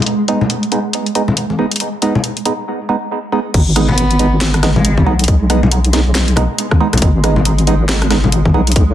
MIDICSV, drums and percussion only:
0, 0, Header, 1, 2, 480
1, 0, Start_track
1, 0, Key_signature, 5, "minor"
1, 0, Tempo, 434783
1, 72, Time_signature, 4, 2, 24, 8
1, 9872, End_track
2, 0, Start_track
2, 0, Title_t, "Drums"
2, 24, Note_on_c, 9, 42, 64
2, 71, Note_off_c, 9, 42, 0
2, 71, Note_on_c, 9, 42, 74
2, 181, Note_off_c, 9, 42, 0
2, 310, Note_on_c, 9, 42, 47
2, 421, Note_off_c, 9, 42, 0
2, 457, Note_on_c, 9, 64, 92
2, 550, Note_on_c, 9, 42, 74
2, 567, Note_off_c, 9, 64, 0
2, 661, Note_off_c, 9, 42, 0
2, 695, Note_on_c, 9, 42, 34
2, 792, Note_off_c, 9, 42, 0
2, 792, Note_on_c, 9, 42, 50
2, 902, Note_off_c, 9, 42, 0
2, 1031, Note_on_c, 9, 42, 75
2, 1141, Note_off_c, 9, 42, 0
2, 1175, Note_on_c, 9, 42, 34
2, 1272, Note_off_c, 9, 42, 0
2, 1272, Note_on_c, 9, 42, 49
2, 1382, Note_off_c, 9, 42, 0
2, 1412, Note_on_c, 9, 63, 57
2, 1414, Note_on_c, 9, 64, 89
2, 1511, Note_on_c, 9, 42, 72
2, 1523, Note_off_c, 9, 63, 0
2, 1524, Note_off_c, 9, 64, 0
2, 1621, Note_off_c, 9, 42, 0
2, 1656, Note_on_c, 9, 63, 62
2, 1767, Note_off_c, 9, 63, 0
2, 1893, Note_on_c, 9, 42, 46
2, 1941, Note_off_c, 9, 42, 0
2, 1941, Note_on_c, 9, 42, 59
2, 1988, Note_off_c, 9, 42, 0
2, 1988, Note_on_c, 9, 42, 69
2, 2099, Note_off_c, 9, 42, 0
2, 2230, Note_on_c, 9, 42, 46
2, 2340, Note_off_c, 9, 42, 0
2, 2378, Note_on_c, 9, 64, 92
2, 2470, Note_on_c, 9, 42, 72
2, 2488, Note_off_c, 9, 64, 0
2, 2580, Note_off_c, 9, 42, 0
2, 2613, Note_on_c, 9, 42, 34
2, 2710, Note_off_c, 9, 42, 0
2, 2710, Note_on_c, 9, 42, 50
2, 2821, Note_off_c, 9, 42, 0
2, 3911, Note_on_c, 9, 36, 121
2, 3911, Note_on_c, 9, 42, 84
2, 3911, Note_on_c, 9, 49, 105
2, 4021, Note_off_c, 9, 36, 0
2, 4021, Note_off_c, 9, 42, 0
2, 4021, Note_off_c, 9, 49, 0
2, 4151, Note_on_c, 9, 37, 51
2, 4151, Note_on_c, 9, 42, 56
2, 4261, Note_off_c, 9, 37, 0
2, 4261, Note_off_c, 9, 42, 0
2, 4290, Note_on_c, 9, 64, 102
2, 4390, Note_on_c, 9, 42, 85
2, 4400, Note_off_c, 9, 64, 0
2, 4501, Note_off_c, 9, 42, 0
2, 4533, Note_on_c, 9, 42, 40
2, 4630, Note_off_c, 9, 42, 0
2, 4630, Note_on_c, 9, 42, 56
2, 4740, Note_off_c, 9, 42, 0
2, 4871, Note_on_c, 9, 38, 126
2, 4871, Note_on_c, 9, 39, 96
2, 4871, Note_on_c, 9, 42, 85
2, 4981, Note_off_c, 9, 38, 0
2, 4981, Note_off_c, 9, 39, 0
2, 4981, Note_off_c, 9, 42, 0
2, 5013, Note_on_c, 9, 37, 75
2, 5013, Note_on_c, 9, 42, 38
2, 5111, Note_off_c, 9, 37, 0
2, 5111, Note_off_c, 9, 42, 0
2, 5111, Note_on_c, 9, 37, 79
2, 5111, Note_on_c, 9, 38, 64
2, 5111, Note_on_c, 9, 42, 57
2, 5221, Note_off_c, 9, 37, 0
2, 5221, Note_off_c, 9, 38, 0
2, 5221, Note_off_c, 9, 42, 0
2, 5255, Note_on_c, 9, 64, 96
2, 5258, Note_on_c, 9, 63, 60
2, 5351, Note_on_c, 9, 42, 83
2, 5366, Note_off_c, 9, 64, 0
2, 5368, Note_off_c, 9, 63, 0
2, 5461, Note_off_c, 9, 42, 0
2, 5491, Note_on_c, 9, 63, 67
2, 5494, Note_on_c, 9, 36, 62
2, 5601, Note_off_c, 9, 63, 0
2, 5604, Note_off_c, 9, 36, 0
2, 5734, Note_on_c, 9, 42, 54
2, 5782, Note_off_c, 9, 42, 0
2, 5782, Note_on_c, 9, 42, 72
2, 5830, Note_off_c, 9, 42, 0
2, 5830, Note_on_c, 9, 36, 124
2, 5830, Note_on_c, 9, 42, 81
2, 5940, Note_off_c, 9, 36, 0
2, 5940, Note_off_c, 9, 42, 0
2, 6070, Note_on_c, 9, 37, 50
2, 6070, Note_on_c, 9, 42, 54
2, 6180, Note_off_c, 9, 37, 0
2, 6180, Note_off_c, 9, 42, 0
2, 6217, Note_on_c, 9, 64, 95
2, 6310, Note_on_c, 9, 42, 80
2, 6327, Note_off_c, 9, 64, 0
2, 6420, Note_off_c, 9, 42, 0
2, 6453, Note_on_c, 9, 42, 38
2, 6549, Note_off_c, 9, 42, 0
2, 6549, Note_on_c, 9, 38, 65
2, 6549, Note_on_c, 9, 42, 57
2, 6660, Note_off_c, 9, 38, 0
2, 6660, Note_off_c, 9, 42, 0
2, 6789, Note_on_c, 9, 38, 127
2, 6789, Note_on_c, 9, 39, 97
2, 6789, Note_on_c, 9, 42, 83
2, 6900, Note_off_c, 9, 38, 0
2, 6900, Note_off_c, 9, 39, 0
2, 6900, Note_off_c, 9, 42, 0
2, 6932, Note_on_c, 9, 42, 38
2, 7022, Note_on_c, 9, 64, 83
2, 7030, Note_off_c, 9, 42, 0
2, 7030, Note_on_c, 9, 37, 78
2, 7030, Note_on_c, 9, 42, 57
2, 7133, Note_off_c, 9, 64, 0
2, 7140, Note_off_c, 9, 37, 0
2, 7140, Note_off_c, 9, 42, 0
2, 7269, Note_on_c, 9, 42, 81
2, 7380, Note_off_c, 9, 42, 0
2, 7412, Note_on_c, 9, 37, 76
2, 7414, Note_on_c, 9, 36, 62
2, 7420, Note_on_c, 9, 63, 59
2, 7522, Note_off_c, 9, 37, 0
2, 7524, Note_off_c, 9, 36, 0
2, 7530, Note_off_c, 9, 63, 0
2, 7652, Note_on_c, 9, 37, 53
2, 7652, Note_on_c, 9, 42, 50
2, 7658, Note_on_c, 9, 64, 90
2, 7701, Note_off_c, 9, 42, 0
2, 7701, Note_on_c, 9, 42, 70
2, 7749, Note_off_c, 9, 42, 0
2, 7749, Note_on_c, 9, 42, 77
2, 7750, Note_on_c, 9, 36, 127
2, 7763, Note_off_c, 9, 37, 0
2, 7768, Note_off_c, 9, 64, 0
2, 7860, Note_off_c, 9, 42, 0
2, 7861, Note_off_c, 9, 36, 0
2, 7990, Note_on_c, 9, 37, 54
2, 7990, Note_on_c, 9, 42, 53
2, 8100, Note_off_c, 9, 37, 0
2, 8100, Note_off_c, 9, 42, 0
2, 8128, Note_on_c, 9, 64, 91
2, 8229, Note_on_c, 9, 42, 82
2, 8238, Note_off_c, 9, 64, 0
2, 8339, Note_off_c, 9, 42, 0
2, 8374, Note_on_c, 9, 42, 38
2, 8470, Note_off_c, 9, 42, 0
2, 8470, Note_on_c, 9, 42, 54
2, 8580, Note_off_c, 9, 42, 0
2, 8709, Note_on_c, 9, 38, 127
2, 8709, Note_on_c, 9, 39, 95
2, 8709, Note_on_c, 9, 42, 80
2, 8820, Note_off_c, 9, 38, 0
2, 8820, Note_off_c, 9, 39, 0
2, 8820, Note_off_c, 9, 42, 0
2, 8853, Note_on_c, 9, 37, 78
2, 8853, Note_on_c, 9, 42, 36
2, 8948, Note_off_c, 9, 37, 0
2, 8948, Note_off_c, 9, 42, 0
2, 8948, Note_on_c, 9, 37, 78
2, 8948, Note_on_c, 9, 38, 65
2, 8948, Note_on_c, 9, 42, 53
2, 9059, Note_off_c, 9, 37, 0
2, 9059, Note_off_c, 9, 38, 0
2, 9059, Note_off_c, 9, 42, 0
2, 9094, Note_on_c, 9, 63, 62
2, 9097, Note_on_c, 9, 64, 97
2, 9189, Note_on_c, 9, 42, 77
2, 9204, Note_off_c, 9, 63, 0
2, 9207, Note_off_c, 9, 64, 0
2, 9299, Note_off_c, 9, 42, 0
2, 9334, Note_on_c, 9, 36, 64
2, 9338, Note_on_c, 9, 63, 71
2, 9444, Note_off_c, 9, 36, 0
2, 9448, Note_off_c, 9, 63, 0
2, 9574, Note_on_c, 9, 42, 49
2, 9622, Note_off_c, 9, 42, 0
2, 9622, Note_on_c, 9, 42, 66
2, 9670, Note_off_c, 9, 42, 0
2, 9670, Note_on_c, 9, 42, 77
2, 9671, Note_on_c, 9, 36, 127
2, 9780, Note_off_c, 9, 42, 0
2, 9781, Note_off_c, 9, 36, 0
2, 9872, End_track
0, 0, End_of_file